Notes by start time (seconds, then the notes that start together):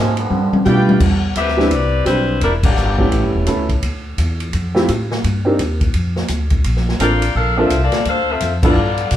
Already playing: G#2 C3 F3 G#3 C#4
0.17 D3 F3 G3 B3, ride
0.30 G2, high tom
0.52 muted upright bass stroke, high tom
0.65 B2 G3 A3 B3 D4 F4 B4 D5 F5 G5, hi-hat pedal, high tom
0.89 high tom
1.00 E2, kick, crash
1.36 D2 C4 G4 B4 E5, kick, hi-hat pedal, ride
1.48 snare
1.57 G3 B3 C4 D4 E4, snare
1.71 C2 C4 G4 B4 D5, kick, ride
2.05 B1 G3 C4 D4 E4 G4 B4 C5, kick, hi-hat pedal, ride
2.41 E1 G3 D4 E4 A#4, kick, ride
2.63 E3 A#3 D4 G4, kick, crash
2.77 G1, hi-hat pedal
2.98 A3 B3 C#4 E4 G4, kick
3.12 A1, kick, ride
3.24 G1
3.35 E1
3.47 C#2 A3 B3 C#4 E4 A4, kick, hi-hat pedal, ride
3.69 kick, ride
3.83 D2, kick, ride
4.18 E2, kick, hi-hat pedal, ride
4.40 ride
4.53 F2, kick, ride
4.75 A3 C4 E4 F4 G4, snare
4.88 A2, kick, hi-hat pedal, ride
5.11 snare
5.24 G2, kick, ride
5.45 A#3 C4 D4 D#4 G4
5.59 D#2, kick, hi-hat pedal, ride
5.81 kick, ride
5.94 F2, kick, ride
6.16 snare
6.28 D2, kick, hi-hat pedal, ride
6.50 kick, ride
6.64 A#1, kick, ride
6.76 snare
6.89 snare
6.99 A1 A#3 C4 D4 F4 A4 A#4 D5 G5, kick, hi-hat pedal, ride
7.22 ride
7.35 A#1 D4 A4 A#4 F5, kick
7.57 A#3 C4 D4 F4 A4 E5
7.70 C2, kick, hi-hat pedal, ride
7.83 A#3 F4 A4 D5
7.92 muted upright bass stroke, snare, ride
8.05 D2 D4 A4 F5, kick, ride
8.09 C5
8.31 C4 F4 A4 E5
8.40 F2, kick, hi-hat pedal, ride
8.63 B3 D4 E4 F4 A4 D5, kick, crash
8.77 G2
8.98 ride
9.11 B2, kick, hi-hat pedal, ride